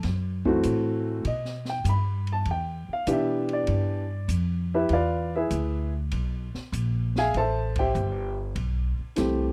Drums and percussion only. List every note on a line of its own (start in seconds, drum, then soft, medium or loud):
0.03 snare soft
0.03 ride medium
0.45 kick soft
0.63 hi-hat pedal medium
0.63 ride medium
1.25 ride medium
1.45 snare soft
1.65 snare soft
1.85 hi-hat pedal soft
1.85 ride medium
2.27 ride soft
2.45 ride medium
3.07 hi-hat pedal medium
3.07 ride medium
3.49 ride soft
3.67 ride medium
4.29 hi-hat pedal medium
4.29 ride medium
4.89 ride soft
5.50 hi-hat pedal medium
5.50 ride medium
6.11 ride medium
6.54 snare soft
6.73 hi-hat pedal medium
6.73 ride medium
7.16 snare medium
7.34 ride medium
7.75 kick medium
7.75 ride medium
7.95 hi-hat pedal soft
8.56 ride medium
9.16 snare soft
9.16 hi-hat pedal medium
9.16 ride medium